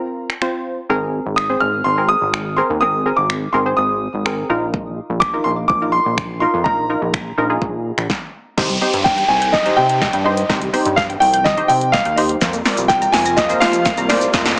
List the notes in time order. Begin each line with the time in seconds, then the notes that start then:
Already playing: C4 F4 A#4
0.30 finger snap
0.42 C4 F4 C5, finger snap
0.89 G#1 C4 G#4 A#4
1.26 G#1
1.36 D#6, finger snap
1.49 C4 G#4 C5
1.60 G#1 F6
1.84 G#1 C6
1.98 C4 G#4 A#4
2.09 D#6
2.22 G#1
2.34 finger snap
2.57 C4 G#4 A#4 C6
2.70 D#2
2.81 G#1 C4 G#4 A#4 D#6
3.06 C4 G#4 A#4
3.17 G#1 D6
3.30 finger snap
3.53 G#1 C4 G#4 A#4 C6
3.66 C4 G#4 C5
3.77 G#1 D#6
4.14 G#1
4.26 C4 G#4 A#4, finger snap
4.49 A#1 D#4 F4 A#4
4.74 kick
5.10 A#1
5.20 D6, finger snap, kick
5.33 D#4 F4 A#4
5.44 A#1 C6
5.68 A#1 D6, kick
5.82 D#4 F4 A#4
5.92 C6
6.06 A#1
6.18 finger snap, kick
6.40 D#4 F4 A#4 C6
6.54 F2
6.64 A#1 D#4 F4 A#4 A#5, kick
6.90 D#4 F4 A#4
7.02 A#1
7.14 finger snap, kick
7.38 A#1 D#4 F4 A#4
7.50 D#4 F4 G#4
7.62 A#1, kick
7.98 A#1, finger snap
8.10 kick, snare
8.57 C2 D#3 D#4 G4 C5, kick, snare, crash, downlifter, riser
8.70 G3, closed hi-hat
8.81 C4 D#4 G4 C5
8.94 G2, closed hi-hat
9.04 G5, kick, snare
9.18 G5, closed hi-hat
9.28 C2 G#5
9.42 G6, closed hi-hat
9.52 D#3 D#5, kick, snare
9.65 D#4 G4 C5, closed hi-hat
9.77 C3 G5
9.89 closed hi-hat
10.02 D#5, kick, snare
10.13 G2 G5, closed hi-hat
10.24 D#4 G4 C5 D#5 C6
10.37 closed hi-hat
10.49 C2 D#3 D#4 G4 C5, kick, snare
10.61 G3, closed hi-hat
10.73 C4 D#4 G4 C5, open hi-hat
10.85 G2, closed hi-hat
10.96 F5, kick, snare
11.10 G5, closed hi-hat
11.20 C2 G5, open hi-hat
11.34 G6, closed hi-hat
11.44 D#3 D#5, kick, snare
11.57 D#4 G4 C5, closed hi-hat
11.68 C3 G5, open hi-hat
11.81 closed hi-hat
11.92 D#5 F5, kick, snare
12.05 D#2 G5, closed hi-hat
12.16 D#4 G4 C5 D#5 C6, open hi-hat
12.29 closed hi-hat
12.41 F2 C3 F3 A#3 F4 A#4 C5, kick, snare, shaker
12.53 A#3, closed hi-hat, shaker
12.65 C4 F4 A#4 D5, snare, open hi-hat, shaker
12.77 C2, closed hi-hat, shaker
12.88 G5, kick, snare, shaker
13.02 A#5, closed hi-hat, shaker
13.12 F2 G#5, snare, open hi-hat, shaker
13.26 A#6, closed hi-hat, shaker
13.37 F3 D#5, kick, snare, shaker
13.49 F4 A#4 C5, closed hi-hat, shaker
13.60 F3 F5, snare, open hi-hat, shaker
13.73 closed hi-hat, shaker
13.86 F5, kick, snare, shaker
13.97 C2 A#5, closed hi-hat, shaker
14.09 F4 A#4 C5 D5 C6, snare, open hi-hat, shaker
14.21 closed hi-hat, shaker
14.33 F2 F3 F4 A#4 D#5, kick, snare, shaker
14.45 A#3, snare, closed hi-hat, shaker